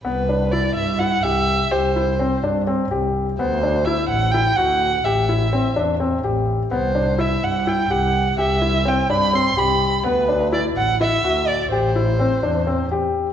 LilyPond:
<<
  \new Staff \with { instrumentName = "Violin" } { \time 7/8 \key c \lydian \tempo 4 = 126 b'4 d''8 e''8 fis''8 e''4 | c''4. r2 | c''4 e''8 fis''8 g''8 fis''4 | e''4. r2 |
c''4 e''8 fis''8 g''8 fis''4 | e''4 g''8 b''8 c'''8 b''4 | b'4 d''8 fis''8 e''4 d''8 | c''2~ c''8 r4 | }
  \new Staff \with { instrumentName = "Felt piano" } { \time 7/8 \key c \lydian b8 d'8 e'4 e'8 g'4 | g'8 e'8 c'8 d'8 c'8 g'4 | b8 d'8 e'4 e'8 fis'4 | g'8 e'8 c'8 d'8 c'8 g'4 |
b8 d'8 e'4 e'8 g'4 | g'8 e'8 c'8 d'8 c'8 g'4 | b8 d'8 e'4 e'8 fis'4 | g'8 e'8 c'8 d'8 c'8 g'4 | }
  \new Staff \with { instrumentName = "Double bass" } { \clef bass \time 7/8 \key c \lydian c,4. g,4 c,4 | c,4. g,4 c,4 | d,4. a,,4 d,4 | a,,4. e,4 a,,4 |
c,4. g,4 c,4 | c,4. g,4 c,4 | d,4. a,,4 d,4 | a,,4. e,4 r4 | }
>>